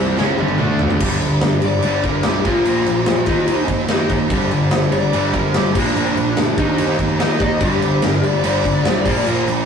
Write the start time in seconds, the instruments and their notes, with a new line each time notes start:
Already playing: picked electric bass C2, overdriven electric guitar C3 G3 C4
0.18 picked electric bass C#2, overdriven electric guitar C#3 G#3 C#4, snare
0.38 picked electric bass G1, overdriven electric guitar G2 D3 G3, high tom
0.48 high tom
0.58 picked electric bass D2, overdriven electric guitar D3 A3 D4, mid tom
0.79 floor tom
0.90 floor tom
1.00 picked electric bass G1, overdriven electric guitar G2 D3 G3, kick, crash
1.21 picked electric bass G1, overdriven electric guitar G2 D3, crash
1.41 picked electric bass G1, overdriven electric guitar G2 D3, snare, crash
1.53 snare
1.62 picked electric bass G1, overdriven electric guitar G2 D3, lead electric guitar D5, crash
1.82 picked electric bass G1, overdriven electric guitar G2 D3 G3, crash
2.03 picked electric bass G1, overdriven electric guitar G2 D3, lead electric guitar A#4, kick, crash
2.22 picked electric bass B1, overdriven electric guitar G2 D3 G3, lead electric guitar G4, snare, crash
2.45 picked electric bass A#1, overdriven electric guitar A#2 F3 A#3, lead electric guitar F4, kick, crash
2.65 picked electric bass A#1, overdriven electric guitar A#2 F3 A#3, crash
2.86 picked electric bass A#1, overdriven electric guitar A#2 F3, crash
3.06 picked electric bass A#1, overdriven electric guitar A#2 F3, snare, crash
3.26 picked electric bass D#2, overdriven electric guitar D#3 A#3 D#4, kick, crash
3.48 picked electric bass D#2, overdriven electric guitar D#3 A#3 D#4, crash
3.68 picked electric bass D#2, overdriven electric guitar D#3 A#3, kick, crash
3.88 picked electric bass D#2, overdriven electric guitar D#3 A#3 D#4, snare, crash
4.10 picked electric bass D#2, overdriven electric guitar D#3 A#3, distorted electric guitar D#4, kick, crash
4.30 picked electric bass G1, overdriven electric guitar G2 D3 G3, kick, crash
4.51 picked electric bass G1, overdriven electric guitar G2 D3, crash
4.71 picked electric bass G1, overdriven electric guitar G2 D3, snare, crash
4.92 picked electric bass G1, overdriven electric guitar G2 D3, lead electric guitar D5, crash
5.13 picked electric bass G1, overdriven electric guitar G2 D3 G3, crash
5.32 picked electric bass G1, overdriven electric guitar G2 D3, lead electric guitar A#4, kick, crash
5.54 picked electric bass G1, overdriven electric guitar G2 D3 G3, lead electric guitar G4, snare, crash
5.75 picked electric bass A#1, overdriven electric guitar A#2 F3 A#3, lead electric guitar D4, kick, crash
5.96 picked electric bass A#1, overdriven electric guitar A#2 F3 A#3, crash
6.16 picked electric bass A#1, overdriven electric guitar A#2 F3, crash
6.37 picked electric bass D2, overdriven electric guitar A#2 F3, snare, crash
6.57 picked electric bass D#2, overdriven electric guitar D#3 A#3 D#4, kick, crash
6.78 picked electric bass D#2, overdriven electric guitar D#3 A#3 D#4, crash
6.99 picked electric bass D#2, overdriven electric guitar D#3 A#3, kick, crash
7.20 picked electric bass D#2, overdriven electric guitar D#3 A#3 D#4, lead electric guitar D#5, snare, crash
7.39 picked electric bass D#2, overdriven electric guitar D#3 A#3, distorted electric guitar D#4, lead electric guitar D#5, kick, crash
7.61 picked electric bass G1, overdriven electric guitar G2 D3 G3, lead electric guitar G4, kick, crash
7.81 picked electric bass G1, overdriven electric guitar G2 D3, crash
8.02 picked electric bass G1, overdriven electric guitar G2 D3, lead electric guitar A#4, snare, crash
8.14 snare
8.23 picked electric bass G1, overdriven electric guitar G2 D3, lead electric guitar D5, crash
8.44 picked electric bass G1, overdriven electric guitar G2 D3 G3, lead electric guitar D5, crash
8.64 picked electric bass G1, overdriven electric guitar G2 D3, kick, crash
8.84 picked electric bass B1, overdriven electric guitar G2 D3 G3, snare, crash
9.05 picked electric bass A#1, overdriven electric guitar A#2 F3 A#3, kick, crash
9.25 picked electric bass A#1, overdriven electric guitar A#2 F3 A#3, crash
9.47 picked electric bass A#1, overdriven electric guitar A#2 F3, crash